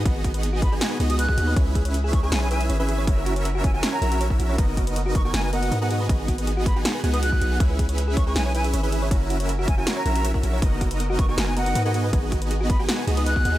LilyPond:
<<
  \new Staff \with { instrumentName = "Flute" } { \time 4/4 \key gis \minor \tempo 4 = 159 r4. b''16 r4 dis'''16 fis'''4 | r4. cis'''16 cis'''16 gis''16 gis''16 gis''16 r4 r16 | r4. gis''16 gis''16 r16 ais''8. r4 | r4. cis'''16 cis'''16 gis''16 gis''16 fis''8. fis''16 fis''16 r16 |
r4. b''16 r4 dis'''16 fis'''4 | r4. cis'''16 cis'''16 gis''16 gis''16 gis''16 r4 r16 | r4. gis''16 gis''16 r16 ais''8. r4 | r4. cis'''16 cis'''16 gis''16 gis''16 fis''8. fis''16 fis''16 r16 |
r4. b''16 r4 dis'''16 fis'''4 | }
  \new Staff \with { instrumentName = "Synth arpeggio sound" } { \time 4/4 \key gis \minor b'16 gis'16 fis'16 b'16 gis'16 fis'16 b'16 gis'16 fis'16 b'16 gis'16 fis'16 b'16 gis'16 fis'16 b'16 | cis''16 b'16 gis'16 cis''16 b'16 gis'16 cis''16 gis'16 gis'16 cis''16 b'16 gis'16 cis''16 b'16 gis'16 cis''16 | cis''16 ais'16 fis'16 cis''16 ais'16 fis'16 cis''16 fis'16 fis'16 cis''16 ais'16 fis'16 cis''16 ais'16 fis'16 cis''16 | b'16 ais'16 fis'16 b'16 ais'16 fis'16 b'16 fis'16 fis'16 b'16 ais'16 fis'16 b'16 ais'16 fis'16 b'16 |
b'16 gis'16 fis'16 b'16 gis'16 fis'16 b'16 fis'16 fis'16 b'16 gis''16 b'16 fis'16 fis'16 fis'16 fis''16 | cis''16 b'16 gis'16 cis''16 b'16 gis'16 cis''16 gis'16 gis'16 cis''16 b'16 gis'16 cis''16 b'16 gis'16 cis''16 | cis''16 ais'16 fis'16 cis''16 ais'16 fis'16 cis''16 fis'16 fis'16 cis''16 ais'16 fis'16 cis''16 ais'16 fis'16 cis''16 | b'16 ais'16 fis'16 b'16 ais'16 fis'16 b'16 fis'16 fis'16 b'16 ais'16 fis'16 b'16 ais'16 fis'16 b'16 |
b'16 gis'16 fis'16 b'16 gis'16 fis'16 b'16 fis'16 fis'16 b'16 gis'16 b'16 b'16 fis'16 fis''16 gis'16 | }
  \new Staff \with { instrumentName = "Supersaw synth" } { \time 4/4 \key gis \minor <b dis' fis' gis' dis''>8. <b dis' fis' gis' dis''>4 <b dis' fis' gis' gis''>8. <b dis' fis' gis' dis''>8. <b dis' fis' gis' dis''>8. | <cis' e' gis' b'>8. <cis' e' gis' b' e''>4 <cis' e' gis' b' gis''>8. <cis' e' gis' b' e''>8. <cis' e' gis' b' e''>8. | <cis' e' fis' ais' e''>8. <cis' e' fis' ais' e''>4 <cis' e' fis' ais' gis''>8. <cis' e' fis' ais' e''>8. <cis' e' fis' ais' e''>8. | <b ais'>8. <b dis' fis' ais' dis''>4 <b dis' fis' ais' gis''>8. <b dis' fis' ais' dis''>8. <b dis' fis' gis' dis''>8. |
<b dis' fis' gis' dis''>8. <b dis' fis' gis' dis''>4 <b dis' fis' gis' gis''>8. <b dis' fis' gis' fis''>8. <b dis' gis'>8. | <e' gis' b' e''>8. <cis' e' gis' b' e''>4 <cis' e' gis' b' gis''>8. <cis' e' gis' b' e''>8. <cis' e' gis' b' e''>8. | <cis' e' fis' ais' e''>8. <cis' e' fis' ais' e''>4 <cis' e' fis' ais' gis''>8. <cis' e' fis' ais' e''>8. <cis' e' fis' ais' e''>8. | <b dis' fis' ais' dis''>8. <b dis' fis' ais' dis''>4 <b dis' fis' ais' gis''>8. <b dis' fis' ais' dis''>8. <b dis' fis' gis' dis''>8. |
<b dis' fis' gis' dis''>8. <b dis' fis' gis' dis''>4 <b dis' fis' gis' gis''>8. <b dis' fis' gis' dis''>8. <b dis' fis' dis''>8. | }
  \new Staff \with { instrumentName = "808-style bass" } { \clef bass \time 4/4 \key gis \minor gis,,2 r8 cis,4 dis,8 | cis,2 b,,4 gis,,4 | fis,,2 r8 ais,,4 ais,,8 | fis,,2 fis,,4 gis,4 |
gis,,2 r8 cis,4 b,,8 | cis,2 b,,4 gis,,4 | r2 r8 ais,,4 ais,,8 | fis,,2 fis,,4 gis,4 |
gis,,2 r8 cis,4 dis,8 | }
  \new DrumStaff \with { instrumentName = "Drums" } \drummode { \time 4/4 <hh bd>8 <hh bd>16 hh16 hh8 <hh bd>8 <hh sn>8 hh16 hh16 hh16 bd16 hh8 | <hh bd>8 <hh bd>16 hh16 hh8 <hh bd>8 <hh sn>8 hh16 hh16 hh8 hh8 | <hh bd>8 hh16 hh16 hh8 <hh bd>8 <hh sn>8 hh16 hh16 hh16 bd16 hh8 | <hh bd>8 <hh bd>16 hh16 hh8 <hh bd>8 <hh sn>8 hh16 hh16 hh8 hh8 |
<hh bd>8 <hh bd>16 hh16 hh8 <hh bd>8 <hh sn>8 hh16 hh16 hh16 bd16 hh8 | <hh bd>8 <hh bd>16 hh16 hh8 <hh bd>8 <hh sn>8 hh16 hh16 hh8 hh8 | <hh bd>8 hh16 hh16 hh8 <hh bd>8 <hh sn>8 hh16 hh16 hh16 bd16 hh8 | <hh bd>8 <hh bd>16 hh16 hh8 <hh bd>8 <hh sn>8 hh16 hh16 hh8 hh8 |
<hh bd>8 <hh bd>16 hh16 hh8 <hh bd>8 <hh sn>8 hh16 hh16 hh16 bd16 hh8 | }
>>